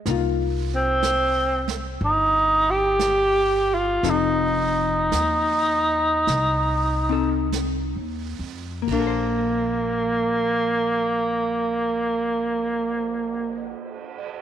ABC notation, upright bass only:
X:1
M:4/4
L:1/8
Q:"Swing" 1/4=50
K:Bb
V:1 name="Upright bass" clef=bass
C,,4 G,,,4 | F,,,2 E,,2 C,,2- (3C,, E,, F,, | B,,,8 |]